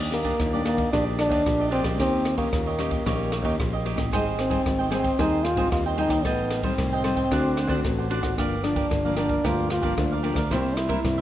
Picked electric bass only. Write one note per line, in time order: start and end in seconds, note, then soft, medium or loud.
0.00 0.32 D#2 medium
0.40 0.85 D#2 medium
0.93 1.27 A#1 medium
1.29 1.42 D#2 medium
1.47 1.80 A#1 medium
1.83 2.00 A#1 medium
2.00 2.45 D#2 loud
2.53 2.98 D#2 medium
3.06 3.40 A#1 loud
3.43 3.55 D#2 medium
3.60 3.93 A#1 medium
3.96 4.13 A1 medium
4.13 4.58 G#1 loud
4.66 5.11 G#1 medium
5.19 5.53 D#2 medium
5.55 5.68 G#1 medium
5.72 6.06 D#2 medium
6.08 6.25 D#2 medium
6.25 6.70 A1 medium
6.79 7.24 C2 medium
7.32 7.66 D2 medium
7.68 7.81 D2 medium
7.85 8.19 A1 medium
8.21 8.38 G#1 medium
8.38 8.83 G1 medium
8.91 9.37 G1 medium
9.45 9.79 D2 medium
9.81 9.94 G1 medium
9.98 10.32 D2 medium
10.34 10.53 D2 medium
10.51 10.96 C2 loud
11.05 11.21 C2 medium